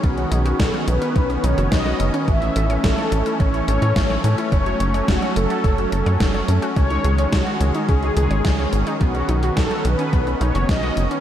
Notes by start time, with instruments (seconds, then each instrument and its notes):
Already playing: analog synth pad C#4
0.04 analog synth bass B1, analog synth pad D#3 B3, synth arpeggio sound B3, analog polysynth F#4, kick, closed hi-hat
0.18 synth arpeggio sound C#4, closed hi-hat
0.32 analog synth bass B1, synth arpeggio sound D#4, closed hi-hat
0.46 synth arpeggio sound F#4, closed hi-hat
0.60 analog synth bass B1, analog polysynth A4, synth arpeggio sound B4, kick, snare, closed hi-hat
0.74 synth arpeggio sound F#4, closed hi-hat
0.88 analog synth bass B1, synth arpeggio sound D#4, analog polysynth B4, closed hi-hat
1.02 synth arpeggio sound C#4, closed hi-hat
1.16 analog synth bass B1, synth arpeggio sound B3, kick, closed hi-hat
1.30 synth arpeggio sound C#4, closed hi-hat
1.44 analog synth bass B1, synth arpeggio sound D#4, analog polysynth C#5, closed hi-hat
1.58 analog synth bass F#1, synth arpeggio sound F#4, closed hi-hat
1.72 analog synth bass B1, synth arpeggio sound B4, analog polysynth D#5, kick, snare, closed hi-hat
1.86 synth arpeggio sound F#4, closed hi-hat
2.00 analog synth bass F#1, synth arpeggio sound D#4, closed hi-hat
2.14 synth arpeggio sound C#4, closed hi-hat
2.28 analog synth bass A1, analog synth pad E3 A3, synth arpeggio sound C#4, analog polysynth E5, kick, closed hi-hat
2.42 synth arpeggio sound E4, closed hi-hat
2.56 analog synth bass A1, synth arpeggio sound A4, closed hi-hat
2.70 synth arpeggio sound C#5, closed hi-hat
2.84 analog synth bass A1, analog polysynth A4, synth arpeggio sound E5, kick, snare, closed hi-hat
2.98 synth arpeggio sound C#5, closed hi-hat
3.12 analog synth bass A1, synth arpeggio sound A4, closed hi-hat
3.26 synth arpeggio sound E4, closed hi-hat
3.40 analog synth bass A1, synth arpeggio sound C#4, analog polysynth C#5, kick, closed hi-hat
3.54 synth arpeggio sound E4, closed hi-hat
3.68 analog synth bass A1, synth arpeggio sound A4, analog polysynth C#5, closed hi-hat
3.82 analog synth bass A2, synth arpeggio sound C#5, closed hi-hat
3.96 analog synth bass A1, synth arpeggio sound E5, kick, snare, closed hi-hat
4.10 synth arpeggio sound C#5, closed hi-hat
4.24 analog synth bass A2, synth arpeggio sound A4, closed hi-hat
4.38 synth arpeggio sound E4, closed hi-hat
4.52 analog synth bass F#1, analog synth pad F#3, synth arpeggio sound C#4, analog polysynth C#5, kick, closed hi-hat
4.66 synth arpeggio sound F#4, closed hi-hat
4.80 analog synth bass F#1, synth arpeggio sound A4, closed hi-hat
4.94 synth arpeggio sound C#5, closed hi-hat
5.08 analog synth bass F#1, analog polysynth F#4, synth arpeggio sound F#5, kick, snare, closed hi-hat
5.22 synth arpeggio sound C#5, closed hi-hat
5.36 analog synth bass F#1, synth arpeggio sound A4, analog polysynth A4, closed hi-hat
5.50 synth arpeggio sound F#4, closed hi-hat
5.64 analog synth bass F#1, synth arpeggio sound C#4, kick, closed hi-hat
5.78 synth arpeggio sound F#4, closed hi-hat
5.92 analog synth bass F#1, synth arpeggio sound A4, closed hi-hat
6.06 analog synth bass F#2, synth arpeggio sound C#5, closed hi-hat
6.20 analog synth bass F#1, synth arpeggio sound F#5, kick, snare, closed hi-hat
6.34 synth arpeggio sound C#5, closed hi-hat
6.48 analog synth bass F#2, synth arpeggio sound A4, closed hi-hat
6.62 synth arpeggio sound F#4, closed hi-hat
6.76 analog synth bass C#2, analog synth pad D#3 G#3, synth arpeggio sound C#4, analog polysynth C#5, kick, closed hi-hat
6.90 synth arpeggio sound D#4, closed hi-hat
7.04 analog synth bass C#2, synth arpeggio sound G#4, closed hi-hat
7.18 synth arpeggio sound C#5, closed hi-hat
7.33 analog synth bass C#2, analog polysynth F#4, synth arpeggio sound D#5, kick, snare, closed hi-hat
7.47 synth arpeggio sound C#5, closed hi-hat
7.61 analog synth bass C#2, synth arpeggio sound G#4, closed hi-hat
7.75 synth arpeggio sound D#4, closed hi-hat
7.89 analog synth bass C#2, synth arpeggio sound C#4, analog polysynth G#4, kick, closed hi-hat
8.03 synth arpeggio sound D#4, closed hi-hat
8.17 analog synth bass C#2, synth arpeggio sound G#4, analog polysynth G#4, closed hi-hat
8.31 analog synth bass G#1, synth arpeggio sound C#5, closed hi-hat
8.45 analog synth bass C#2, synth arpeggio sound D#5, kick, snare, closed hi-hat
8.59 synth arpeggio sound C#5, closed hi-hat
8.73 analog synth bass G#1, synth arpeggio sound G#4, closed hi-hat
8.87 synth arpeggio sound D#4, closed hi-hat
9.01 analog synth bass B1, synth arpeggio sound B3, analog synth pad B3 C#4, analog polysynth F#4, kick, closed hi-hat
9.15 synth arpeggio sound C#4, closed hi-hat
9.29 analog synth bass B1, synth arpeggio sound D#4, closed hi-hat
9.43 synth arpeggio sound F#4, closed hi-hat
9.57 analog synth bass B1, analog polysynth A4, synth arpeggio sound B4, kick, snare, closed hi-hat
9.71 synth arpeggio sound F#4, closed hi-hat
9.85 analog synth bass B1, synth arpeggio sound D#4, analog polysynth B4, closed hi-hat
9.99 synth arpeggio sound C#4, closed hi-hat
10.13 analog synth bass B1, synth arpeggio sound B3, kick, closed hi-hat
10.27 synth arpeggio sound C#4, closed hi-hat
10.41 analog synth bass B1, synth arpeggio sound D#4, analog polysynth C#5, closed hi-hat
10.55 analog synth bass F#1, synth arpeggio sound F#4, closed hi-hat
10.69 analog synth bass B1, synth arpeggio sound B4, analog polysynth D#5, kick, snare, closed hi-hat
10.83 synth arpeggio sound F#4, closed hi-hat
10.97 analog synth bass F#1, synth arpeggio sound D#4, closed hi-hat
11.11 synth arpeggio sound C#4, closed hi-hat